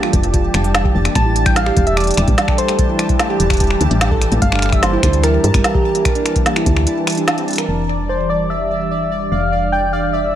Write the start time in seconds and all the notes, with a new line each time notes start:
Already playing: E3 G3 D4 G4 A4 A5
0.03 F4, finger snap
0.13 F1, kick, closed hi-hat
0.23 closed hi-hat
0.34 F4, kick, closed hi-hat
0.54 F1, finger snap, closed hi-hat
0.64 G3, closed hi-hat
0.75 finger snap, snare, closed hi-hat
0.85 G4, kick
0.95 F1
1.05 A#3, finger snap, closed hi-hat
1.15 A1 G3 A5, finger snap, kick, closed hi-hat
1.26 E4
1.36 closed hi-hat
1.46 G3 G5, finger snap, kick, closed hi-hat
1.56 A3 F5, snare, closed hi-hat
1.66 G4, finger snap
1.77 E1, kick, closed hi-hat
1.87 E5, closed hi-hat
1.97 G4 D5, finger snap, closed hi-hat
2.00 closed hi-hat
2.04 closed hi-hat
2.07 closed hi-hat
2.11 closed hi-hat
2.14 finger snap, closed hi-hat
2.17 E1, closed hi-hat
2.28 A1 G3, kick, closed hi-hat
2.38 snare, closed hi-hat
2.48 A4, finger snap, kick
2.58 C5, closed hi-hat
2.68 A3, finger snap, closed hi-hat
2.79 G3, kick, closed hi-hat
2.89 E4
2.99 finger snap, closed hi-hat
3.09 G3, kick, closed hi-hat
3.19 A3, finger snap, snare, closed hi-hat
3.30 G4
3.40 E1, closed hi-hat
3.50 finger snap, kick, closed hi-hat
3.53 closed hi-hat
3.57 G4, kick, closed hi-hat
3.60 closed hi-hat
3.64 closed hi-hat
3.67 finger snap, closed hi-hat
3.81 D2, closed hi-hat
3.91 A1 G3, closed hi-hat
4.01 finger snap, snare, closed hi-hat
4.11 A4, kick
4.21 finger snap, closed hi-hat
4.32 A1 A3, closed hi-hat
4.42 G1 G3 F5, kick, closed hi-hat
4.52 D4, finger snap
4.55 finger snap
4.59 finger snap
4.62 finger snap, closed hi-hat
4.66 finger snap
4.69 G3 E5, finger snap, kick
4.72 finger snap, closed hi-hat
4.83 A#3 C5, snare, closed hi-hat
4.93 E4
5.03 D2, finger snap, kick, closed hi-hat
5.13 closed hi-hat
5.23 E4 A#4, finger snap, closed hi-hat
5.44 G2, closed hi-hat
5.54 G1 G3, finger snap, kick, closed hi-hat
5.64 snare, closed hi-hat
5.75 G4, kick
5.95 A#3, closed hi-hat
6.05 G3, finger snap, kick, closed hi-hat
6.15 D4, closed hi-hat
6.26 finger snap, closed hi-hat
6.36 G3, kick, closed hi-hat
6.46 A#3, snare, closed hi-hat
6.56 E4, finger snap, closed hi-hat
6.66 D2, kick, closed hi-hat
6.77 finger snap
6.87 E4, closed hi-hat
7.07 finger snap, closed hi-hat
7.10 closed hi-hat
7.12 closed hi-hat
7.15 D4, closed hi-hat
7.17 closed hi-hat
7.28 finger snap, snare, closed hi-hat
7.38 C4, closed hi-hat
7.48 D4, closed hi-hat
7.51 closed hi-hat
7.53 closed hi-hat
7.56 A#4, finger snap, closed hi-hat
7.58 closed hi-hat
7.68 F1 D5
7.85 G3
7.97 G4
8.09 D4 C5
8.30 D5
8.50 E5
9.32 F1 F5
9.72 G5
9.93 F5
10.13 E5